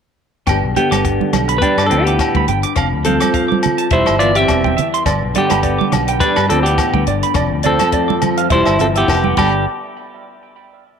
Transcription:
0.47 G1 G2 D3 B3 D4 G5, kick, cross-stick, closed hi-hat, low agogo
0.51 G4
0.63 B1
0.76 D3 B3 G4 G5, closed hi-hat, high conga
0.91 G1 D6, cross-stick, closed hi-hat, high conga, low agogo
1.05 B3, muted clean electric guitar stroke, kick, closed hi-hat
1.21 high conga
1.33 B1 D3, cross-stick, closed hi-hat, high conga, low conga, low agogo
1.48 B5, closed hi-hat
1.58 G3 B4 G5, kick, closed hi-hat
1.62 D4
1.77 G2 D6, cross-stick, low agogo
1.86 F3 C4 A4
1.91 D2 B3 G5, closed hi-hat
2.02 E3 B3 G4
2.07 D6, closed hi-hat
2.19 A2, kick, cross-stick, closed hi-hat, low agogo
2.35 D2 B5, kick, high conga
2.47 G1 G2 G5, closed hi-hat, low conga
2.63 D6, closed hi-hat
2.76 F1 F2 F5, kick, cross-stick, closed hi-hat, low agogo
2.93 D2
3.04 F3 C4 A4 F5, closed hi-hat, high conga
3.20 D6, cross-stick, closed hi-hat, high conga, low agogo
3.33 G2 F5, kick, closed hi-hat
3.48 D6, high conga
3.63 closed hi-hat, high conga, low conga, low agogo
3.78 A5, closed hi-hat
3.90 E1 E2 G3 E4 C5 E5, kick, closed hi-hat
4.06 G1 C6, cross-stick, low agogo
4.19 E3 B3 F4 D5 E5, closed hi-hat
4.35 C4 G4 E5 D6, closed hi-hat
4.48 E1 G3, kick, cross-stick, closed hi-hat, low agogo
4.64 G5, kick, high conga
4.77 E3 E5, closed hi-hat, low conga
4.94 C6, closed hi-hat
5.05 G1 G2 D5, kick, cross-stick, closed hi-hat, low agogo
5.23 B1
5.34 D3 B3 G4 D5, closed hi-hat, high conga
5.39 D3
5.50 G1 B5, cross-stick, closed hi-hat, high conga, low agogo
5.63 B3 D5, kick, closed hi-hat
5.78 D6, high conga
5.92 B1 D3, cross-stick, closed hi-hat, high conga, low conga, low agogo
6.08 G5, closed hi-hat
6.20 G3 D4 B4 D5, kick, closed hi-hat
6.36 G2 B5, cross-stick, low agogo
6.49 D2 F3 B3 C4 A4 D5, closed hi-hat
6.63 B3 G4 D6, closed hi-hat
6.68 E3
6.78 A2, kick, cross-stick, closed hi-hat, low agogo
6.94 D2 G5, kick, high conga
7.07 G1 G2 D5, closed hi-hat, low conga
7.23 B5, closed hi-hat
7.34 F1 F2 D5, kick, cross-stick, closed hi-hat, low agogo
7.51 D2
7.63 F3 C4 A4 D5, closed hi-hat, low conga
7.67 F3
7.79 A5, cross-stick, closed hi-hat, high conga, low agogo
7.92 A3 D5, kick, closed hi-hat
8.08 D6, high conga
8.21 F3, closed hi-hat, high conga, low conga, low agogo
8.37 F5, closed hi-hat
8.50 E1 E2 G3 E4 C5 E5, muted nylon-string guitar stroke, kick, closed hi-hat
8.54 E4
8.65 G1 E5, cross-stick, low agogo
8.79 E3 F3 C4 A4 E5, closed hi-hat, low conga
8.95 E3 B3 G4 E5, closed hi-hat
9.08 F1 E2, kick, snare, low agogo
9.24 G5, high conga
9.37 G1 G2 D3 B3 D4 G4 D5 G5 B5, kick, crash, high conga, low agogo

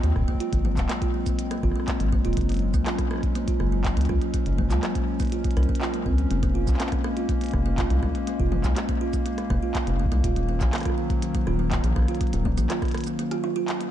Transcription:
Already playing: F#3 G#3 C4
0.03 D#2 A#3, closed hi-hat
0.16 D#1, kick, cross-stick
0.22 kick
0.28 A#3, kick
0.34 kick
0.40 F4, closed hi-hat
0.53 G#1 A#3, kick, closed hi-hat
0.65 A#3, high tom
0.77 D#1, kick, clap, cabasa
0.89 A#3, cross-stick, clap, closed hi-hat
1.02 F4, kick, closed hi-hat
1.14 A#3
1.26 A#3, kick, closed hi-hat, cabasa
1.39 closed hi-hat
1.51 A#3, cross-stick, closed hi-hat
1.63 G#1 F4, kick, cross-stick
1.71 cross-stick
1.76 A#3
1.80 cross-stick
1.88 A#3, kick, clap, closed hi-hat
2.00 G#1, closed hi-hat
2.12 A#3, kick
2.25 D#1 F4, closed hi-hat
2.33 A#3, closed hi-hat
2.37 F#1 C#4, kick, closed hi-hat
2.41 closed hi-hat
2.49 A#3, closed hi-hat
2.52 closed hi-hat
2.54 closed hi-hat
2.57 closed hi-hat
2.59 closed hi-hat
2.74 C#2 A#3, kick, cabasa
2.86 F4, cross-stick, clap, closed hi-hat
2.98 A#3, kick, cross-stick, closed hi-hat
3.11 A#3, cross-stick
3.13 cross-stick
3.16 cross-stick
3.18 cross-stick
3.21 kick, cross-stick, closed hi-hat
3.35 A#3, closed hi-hat
3.48 F4, kick, closed hi-hat
3.60 F#1 A#3, cross-stick
3.72 A#3
3.85 kick, clap, closed hi-hat
3.97 C#2 A#3, closed hi-hat
4.01 closed hi-hat
4.05 closed hi-hat
4.09 C#2 F4, kick, cross-stick
4.22 A#3, closed hi-hat
4.34 A#3, kick, closed hi-hat
4.46 F#1, closed hi-hat
4.58 A#3, kick, high tom
4.71 C#2 F4, clap, closed hi-hat, cabasa
4.83 A#3, cross-stick, clap, closed hi-hat
4.95 A#3, kick, closed hi-hat
5.20 A#3, kick, closed hi-hat, cabasa
5.22 closed hi-hat
5.25 closed hi-hat
5.27 closed hi-hat
5.30 F4, closed hi-hat
5.32 closed hi-hat
5.44 A#3, kick, closed hi-hat
5.51 closed hi-hat
5.57 C2 A#4, cross-stick, closed hi-hat
5.63 closed hi-hat
5.69 A#3, kick
5.75 closed hi-hat
5.81 F4, clap
5.94 A#3, closed hi-hat
6.06 C#2 C4, kick
6.18 A#3, closed hi-hat
6.30 F1 G#3 A#3, closed hi-hat
6.43 A#3, kick, closed hi-hat
6.55 F4
6.67 C2 A#3, kick, clap, cabasa
6.74 clap
6.80 A#3, cross-stick, clap, closed hi-hat
6.86 clap
6.92 A#3, kick, cross-stick, closed hi-hat
7.04 A#3, cross-stick
7.17 F4, closed hi-hat
7.29 A#3, kick, closed hi-hat
7.41 A#3, closed hi-hat
7.44 closed hi-hat
7.46 closed hi-hat
7.49 closed hi-hat
7.53 F1 A#3, kick, cross-stick
7.66 A#3
7.78 F4, kick, clap, closed hi-hat
7.90 C2 A#3, closed hi-hat
8.03 C2 A#3, kick, cross-stick
8.15 A#3, closed hi-hat
8.27 A#3, closed hi-hat
8.40 F1 F4, kick
8.52 A#3, high tom
8.64 C2 A#3, kick, clap, cabasa
8.76 A#3, cross-stick, clap, closed hi-hat
8.89 A#3, kick, closed hi-hat
9.01 F4
9.13 A#3, kick, closed hi-hat, cabasa
9.26 A#3, closed hi-hat
9.38 A#3, cross-stick, closed hi-hat
9.50 F1 A#3, kick, cross-stick
9.63 F4
9.75 A#3, kick, clap, closed hi-hat
9.87 F1 A#3, closed hi-hat
9.99 A#3
10.06 kick
10.12 C2 A#3, closed hi-hat
10.24 D#1 D#3 F#3 F4, kick, closed hi-hat
10.36 A#3, closed hi-hat
10.49 A#3
10.61 A#1 A#3, kick, clap, cabasa
10.73 A#3, cross-stick, clap, closed hi-hat
10.76 closed hi-hat
10.80 cross-stick, closed hi-hat
10.83 kick, cross-stick, closed hi-hat
10.85 F4, closed hi-hat
10.90 cross-stick
10.98 A#3
11.10 A#3, kick, closed hi-hat
11.22 A#3, closed hi-hat
11.35 A#3, kick, closed hi-hat
11.47 D#1 F4, cross-stick
11.59 A#3
11.71 A#3, kick, clap, closed hi-hat
11.84 A#1 A#3, closed hi-hat
11.96 A#1 A#3, kick, cross-stick
11.99 cross-stick
12.02 cross-stick
12.05 F4, cross-stick
12.08 cross-stick, closed hi-hat
12.11 cross-stick
12.15 cross-stick, closed hi-hat
12.18 A#3, kick, cross-stick, closed hi-hat
12.27 closed hi-hat
12.33 D#1 A#3, closed hi-hat
12.45 A#3, kick, high tom
12.57 A#1 A#3, closed hi-hat, cabasa
12.70 F4, cross-stick, clap, closed hi-hat
12.82 A#3, kick, cross-stick, closed hi-hat
12.85 closed hi-hat
12.88 closed hi-hat
12.91 cross-stick, closed hi-hat
12.94 A#3, closed hi-hat
12.98 closed hi-hat
13.01 closed hi-hat
13.04 A#3, closed hi-hat, cabasa
13.19 A#3, closed hi-hat
13.31 F4, cross-stick, closed hi-hat
13.44 F4, cross-stick
13.56 F4
13.68 clap, closed hi-hat
13.80 A#3, closed hi-hat

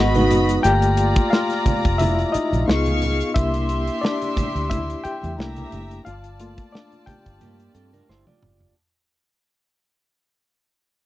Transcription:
Already playing: G#1 G#3 B3 F#4 D#5 F#5 B5
0.15 D#4 B4, closed hi-hat, muted conga, high conga
0.31 F#1, closed hi-hat, low conga
0.49 closed hi-hat
0.63 G1 A3 A#3 F4 G4 D5 G5 A#5, closed hi-hat, muted conga
0.82 closed hi-hat
0.97 closed hi-hat
1.16 kick, closed hi-hat
1.30 F4 F5, snare, muted conga
1.50 snare, closed hi-hat
1.66 muted fingered electric bass stroke, kick, closed hi-hat, high conga, low conga
1.85 F1, kick, closed hi-hat
1.98 E4 E5, closed hi-hat, muted conga, high conga, low conga
2.19 closed hi-hat
2.32 D#4 D#5, muted fingered electric bass stroke, closed hi-hat
2.53 A#1, closed hi-hat, high conga
2.67 C#2 B3 D#4 F4 G#4 F5 C#6, snare, muted conga
2.86 closed hi-hat, high conga
3.02 closed hi-hat, low conga
3.21 closed hi-hat
3.34 C2 A#3 D4 E4 G4 E5 C6, kick, closed hi-hat
3.54 closed hi-hat, muted conga
3.69 closed hi-hat
3.88 closed hi-hat
4.01 D4 D5, snare, muted conga
4.22 closed hi-hat, muted conga
4.37 muted fingered electric bass stroke, kick, closed hi-hat, high conga, low conga
4.55 D2, closed hi-hat
4.70 E4 E5, kick, closed hi-hat, muted conga, high conga, low conga
4.88 closed hi-hat, muted conga
5.04 G4 G5, muted fingered electric bass stroke, closed hi-hat
5.23 E2, closed hi-hat, high conga
5.38 C2 A3 A#3 D4 E4 G4 E5 A#5, snare, muted conga
5.56 closed hi-hat, high conga
5.72 F#1, closed hi-hat, low conga
5.91 closed hi-hat
6.05 G1 F4 D5 F5 A5, closed hi-hat, muted conga
6.24 closed hi-hat
6.39 A3 A#3 F4, closed hi-hat
6.58 kick, closed hi-hat
6.72 D4 D5, snare, muted conga
6.92 closed hi-hat, muted conga
7.06 G4 G5, muted fingered electric bass stroke, kick, closed hi-hat, high conga, low conga
7.26 G1, kick, closed hi-hat
7.41 G2 A#3 G4, closed hi-hat, muted conga, high conga, low conga
7.59 closed hi-hat, muted conga
7.75 G2 C4 A4, closed hi-hat
7.93 D4 A#4, closed hi-hat, high conga
8.09 G1 E4 C5, snare, muted conga
8.27 F4 D5, high tom, muted conga, high conga
8.42 F#1, mid tom, low conga
8.60 floor tom

